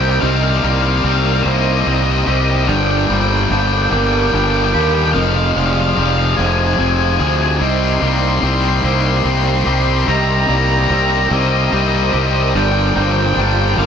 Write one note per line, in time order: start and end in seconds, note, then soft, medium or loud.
0.00 0.20 C2 medium
0.00 0.21 C3 medium
0.00 0.23 G3 loud
0.00 0.63 A#3 medium
0.00 0.22 C4 medium
0.00 1.03 C4 medium
0.00 2.64 C4 medium
0.00 2.64 D#4 medium
0.00 1.86 G4 medium
0.00 5.10 G4 medium
0.00 5.11 A#4 medium
0.00 0.22 C5 medium
0.00 0.09 G5 medium
0.10 0.17 G5 medium
0.21 0.62 C2 loud
0.21 2.27 C3 medium
0.21 0.62 C3 loud
0.21 0.64 G3 loud
0.21 0.63 C4 loud
0.21 0.63 D#5 loud
0.21 0.28 F5 medium
0.28 0.35 F5 medium
0.36 0.43 F5 medium
0.43 0.50 F5 medium
0.51 0.58 F5 medium
0.58 0.64 F5 medium
0.63 1.03 C2 medium
0.63 1.03 C3 medium
0.63 1.04 G3 loud
0.63 1.44 A#3 medium
0.63 1.04 C4 loud
0.63 1.45 D5 medium
0.63 0.72 F5 medium
0.74 0.81 F5 medium
0.82 0.88 F5 medium
0.88 0.96 F5 medium
0.96 1.03 F5 medium
1.03 1.44 C2 loud
1.03 1.45 C3 medium
1.03 1.45 G3 medium
1.03 1.85 C4 medium
1.03 1.46 C4 loud
1.03 1.11 F5 medium
1.11 1.17 F5 medium
1.18 1.25 F5 medium
1.26 1.33 F5 medium
1.33 1.41 F5 medium
1.42 1.85 C2 loud
1.42 2.69 A#3 medium
1.42 2.26 C5 medium
1.42 1.50 D#5 medium
1.42 1.49 F5 medium
1.46 1.86 C3 medium
1.46 1.86 G3 medium
1.46 1.87 C4 loud
1.51 1.57 D#5 medium
1.58 1.65 D#5 medium
1.66 1.73 D#5 medium
1.73 1.80 D#5 medium
1.81 1.88 D#5 medium
1.86 2.26 C2 medium
1.86 2.26 C3 medium
1.86 2.26 G3 medium
1.86 2.68 C4 medium
1.86 2.27 C4 medium
1.86 1.95 D#5 medium
1.95 2.03 D#5 medium
2.03 2.10 D#5 medium
2.11 2.18 D#5 medium
2.19 2.26 D#5 medium
2.26 2.67 C2 medium
2.26 2.66 C3 medium
2.26 2.66 G3 loud
2.26 2.66 C4 loud
2.26 2.68 G4 medium
2.26 2.68 C5 medium
2.26 2.33 D#5 medium
2.34 2.40 D#5 medium
2.41 2.48 D#5 medium
2.50 2.56 D#5 medium
2.56 2.64 D#5 medium
2.64 4.73 G2 medium
2.64 3.08 G2 loud
2.64 3.08 D3 loud
2.64 3.09 D5 medium
2.64 2.72 D#5 medium
2.64 2.75 G5 loud
2.69 3.08 G1 loud
2.69 3.09 G3 loud
2.69 5.13 D4 medium
2.69 7.57 F5 medium
2.76 2.83 G5 medium
2.83 2.90 G5 medium
2.90 2.97 G5 medium
2.97 3.05 G5 medium
3.05 3.50 G2 medium
3.05 3.90 A#3 medium
3.05 3.13 G5 medium
3.10 3.49 G1 medium
3.10 3.50 D3 medium
3.10 3.51 G3 medium
3.10 3.92 C5 medium
3.10 3.20 G5 loud
3.21 3.28 G5 medium
3.28 3.35 G5 medium
3.36 3.43 G5 medium
3.44 3.50 G5 medium
3.50 3.90 G1 loud
3.50 3.90 G2 medium
3.50 3.91 D3 loud
3.50 3.91 G3 loud
3.50 4.32 D4 medium
3.50 3.58 G5 medium
3.58 3.66 G5 medium
3.67 3.73 G5 medium
3.73 3.81 G5 medium
3.82 3.90 G5 medium
3.90 4.31 G1 loud
3.90 4.31 G2 medium
3.90 4.32 D3 loud
3.90 4.32 G3 loud
3.90 5.15 A#3 medium
3.90 4.72 A#4 medium
3.90 3.97 G5 loud
3.97 4.04 G5 medium
4.04 4.12 G5 medium
4.12 4.20 G5 medium
4.20 4.27 G5 medium
4.27 4.35 G5 medium
4.32 4.73 G1 medium
4.32 4.72 G2 medium
4.32 4.73 D3 loud
4.32 4.73 G3 loud
4.32 5.15 D4 medium
4.32 4.43 G5 medium
4.44 4.50 G5 medium
4.51 4.57 G5 medium
4.58 4.65 G5 medium
4.65 4.72 G5 medium
4.72 5.14 D#2 medium
4.72 5.12 G2 medium
4.72 5.12 D3 loud
4.72 5.12 G3 loud
4.72 5.15 G4 medium
4.72 5.15 A#4 medium
4.72 4.80 G5 medium
4.80 4.88 G5 medium
4.88 4.94 G5 medium
4.95 5.02 G5 medium
5.03 5.11 G5 medium
5.13 5.55 F1 loud
5.13 5.55 F2 loud
5.13 7.20 F2 medium
5.13 5.55 C3 loud
5.13 5.56 F3 loud
5.13 12.50 D#4 medium
5.13 7.59 G#4 medium
5.13 10.04 C5 medium
5.13 5.56 D#5 medium
5.13 5.20 F5 loud
5.20 5.28 F5 medium
5.29 5.36 F5 medium
5.37 5.43 F5 medium
5.44 5.50 F5 medium
5.51 5.57 F5 medium
5.55 5.96 F1 medium
5.55 5.96 F2 medium
5.55 5.97 C3 medium
5.55 5.97 F3 medium
5.55 6.37 G#3 medium
5.55 6.38 D5 medium
5.55 5.65 F5 loud
5.66 5.72 F5 medium
5.73 5.80 F5 loud
5.81 5.89 F5 medium
5.89 5.94 F5 medium
5.95 6.37 F1 medium
5.95 6.36 F2 medium
5.95 6.37 C3 loud
5.95 6.37 F3 loud
5.95 6.78 C4 medium
5.95 6.02 F5 medium
6.02 6.09 F5 medium
6.10 6.17 F5 medium
6.18 6.25 F5 medium
6.25 6.33 F5 medium
6.33 6.36 F5 medium
6.33 6.44 G#5 loud
6.37 6.78 F1 loud
6.37 6.77 F2 medium
6.37 6.78 C3 medium
6.37 6.78 F3 loud
6.37 7.61 G#3 medium
6.37 7.18 C5 medium
6.46 6.51 G#5 medium
6.52 6.58 G#5 medium
6.59 6.66 G#5 medium
6.68 6.74 G#5 loud
6.74 6.81 G#5 medium
6.78 7.18 F1 medium
6.78 7.17 F2 medium
6.78 7.18 C3 medium
6.78 7.18 F3 medium
6.78 8.04 C4 medium
6.78 6.88 G#5 loud
6.89 6.96 G#5 medium
6.96 7.03 G#5 medium
7.04 7.11 G#5 medium
7.11 7.19 G#5 medium
7.19 7.60 D2 loud
7.19 7.58 F2 medium
7.19 7.58 C3 medium
7.19 7.58 F3 loud
7.19 7.61 G#4 medium
7.19 7.27 G#5 medium
7.27 7.34 G#5 medium
7.35 7.42 G#5 medium
7.42 7.48 G#5 medium
7.49 7.56 G#5 medium
7.57 9.66 C3 medium
7.57 8.02 C3 loud
7.57 8.02 G3 medium
7.57 8.02 C4 loud
7.57 7.65 G#5 medium
7.61 8.01 C2 loud
7.61 13.86 A#4 medium
7.61 8.02 D#5 medium
7.61 12.51 G5 medium
7.61 7.69 C6 loud
7.69 7.76 C6 medium
7.76 7.84 C6 loud
7.85 7.92 C6 medium
7.92 7.99 C6 loud
8.00 8.42 C2 medium
8.00 8.43 C3 medium
8.00 8.43 G3 medium
8.00 8.82 A#3 medium
8.00 8.43 C4 medium
8.00 8.07 C6 medium
8.08 8.15 C6 loud
8.15 8.22 C6 medium
8.23 8.29 C6 loud
8.30 8.37 C6 medium
8.38 9.23 C4 medium
8.38 8.45 C6 loud
8.43 8.82 C2 medium
8.43 8.83 C3 loud
8.43 8.85 G3 medium
8.43 8.84 C4 loud
8.43 8.53 C6 medium
8.54 8.60 C6 medium
8.61 8.68 C6 medium
8.69 8.75 C6 medium
8.75 8.83 C6 medium
8.83 9.24 C2 loud
8.83 9.24 C3 medium
8.83 9.26 G3 medium
8.83 10.48 A#3 medium
8.83 9.25 C4 loud
8.83 9.64 C5 medium
8.83 8.93 C6 loud
8.93 9.00 C6 medium
9.01 9.09 C6 medium
9.10 9.17 C6 medium
9.17 9.24 C6 medium
9.24 9.65 C2 medium
9.24 9.66 C3 medium
9.24 9.66 G3 medium
9.24 10.89 C4 medium
9.24 9.66 C4 medium
9.24 9.32 C6 medium
9.32 9.40 C6 loud
9.40 9.48 C6 medium
9.49 9.56 C6 loud
9.57 9.63 C6 medium
9.64 10.06 C2 loud
9.64 10.05 C3 medium
9.64 10.07 G3 medium
9.64 10.07 C4 loud
9.64 11.71 G4 medium
9.64 10.07 C5 medium
9.64 9.71 C6 loud
9.73 9.80 C6 medium
9.80 9.87 C6 medium
9.88 9.96 C6 medium
9.96 10.04 C6 medium
10.07 10.47 C2 loud
10.07 10.48 C3 loud
10.07 12.13 C3 medium
10.07 10.49 G3 loud
10.07 10.48 C4 loud
10.07 13.86 C5 medium
10.07 10.49 D#5 loud
10.07 10.15 A#5 loud
10.16 10.23 A#5 medium
10.25 10.32 A#5 medium
10.33 10.39 A#5 medium
10.39 10.47 A#5 loud
10.48 10.88 C2 medium
10.48 10.89 C3 medium
10.48 10.90 G3 loud
10.48 11.30 A#3 medium
10.48 10.90 C4 loud
10.48 11.31 D5 medium
10.48 10.56 A#5 medium
10.56 10.64 A#5 loud
10.64 10.70 A#5 medium
10.71 10.78 A#5 loud
10.80 10.87 A#5 medium
10.87 11.29 C2 loud
10.87 11.30 C3 medium
10.87 11.31 G3 loud
10.87 11.71 C4 medium
10.87 11.31 C4 loud
10.87 10.94 A#5 medium
10.95 11.02 A#5 medium
11.03 11.10 A#5 medium
11.12 11.18 A#5 medium
11.19 11.26 A#5 medium
11.31 11.70 C2 loud
11.31 11.71 C3 medium
11.31 11.72 G3 medium
11.31 12.54 A#3 medium
11.31 11.73 C4 loud
11.31 12.12 C5 medium
11.31 11.39 D#5 loud
11.40 11.48 D#5 medium
11.48 11.56 D#5 medium
11.57 11.64 D#5 medium
11.64 11.71 D#5 medium
11.72 12.12 C2 loud
11.72 12.12 C3 medium
11.72 12.13 G3 loud
11.72 12.54 C4 medium
11.72 12.14 C4 loud
11.72 11.80 D#5 medium
11.81 11.88 D#5 medium
11.88 11.96 D#5 medium
11.96 12.03 D#5 medium
12.03 12.11 D#5 medium
12.12 12.53 C2 loud
12.12 12.52 C3 medium
12.12 12.52 G3 loud
12.12 12.52 C4 medium
12.12 12.54 G4 medium
12.12 12.54 C5 medium
12.12 12.19 D#5 medium
12.19 12.26 D#5 medium
12.27 12.34 D#5 medium
12.34 12.42 D#5 medium
12.42 12.50 D#5 medium
12.50 13.86 F4 medium
12.50 12.58 D#5 medium
12.50 13.86 G5 loud
12.54 12.94 G1 loud
12.54 13.86 G2 medium
12.54 12.94 G2 loud
12.54 12.95 D3 loud
12.54 12.95 G3 loud
12.54 12.95 D5 loud
12.54 12.63 G5 loud
12.64 12.71 G5 medium
12.72 12.78 G5 medium
12.79 12.86 G5 medium
12.87 12.95 G5 medium
12.95 13.35 G1 loud
12.95 13.36 G2 medium
12.95 13.37 D3 medium
12.95 13.37 G3 loud
12.95 13.76 A#3 medium
12.95 13.77 C5 medium
12.95 13.01 G5 medium
13.02 13.10 G5 loud
13.12 13.18 G5 medium
13.18 13.26 G5 loud
13.26 13.34 G5 medium
13.34 13.76 G1 loud
13.34 13.77 G2 medium
13.34 13.77 D3 loud
13.34 13.86 D4 medium
13.34 13.41 G5 medium
13.38 13.77 G3 loud
13.38 13.49 G5 medium
13.50 13.58 G5 medium
13.58 13.66 G5 medium
13.66 13.73 G5 medium
13.74 13.86 A#3 medium
13.74 13.86 A#4 medium
13.74 13.78 G5 medium
13.78 13.86 G1 loud
13.78 13.86 G2 medium
13.78 13.86 D3 loud
13.78 13.86 G3 loud
13.78 13.85 F5 loud